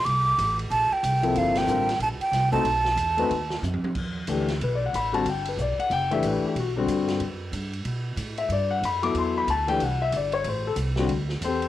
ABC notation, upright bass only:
X:1
M:4/4
L:1/8
Q:"Swing" 1/4=185
K:Cmix
V:1 name="Upright bass" clef=bass
C,,2 A,,,2 B,,, z C,,2 | G,,,2 A,,,2 B,,, z C,,2 | =B,,,2 E,,2 ^D,,2 ^F,, z | [K:Em] E,,2 D,,2 B,,,2 A,,,2 |
G,,,2 B,,, z F,,,2 A,,, z | B,,,2 G,,2 F,,2 G,,2 | B,,2 A,,2 G,,2 F,,2 | E,,2 D,,2 C,,2 G,,,2 |
A,,,2 C,,2 D,,2 E,,2 |]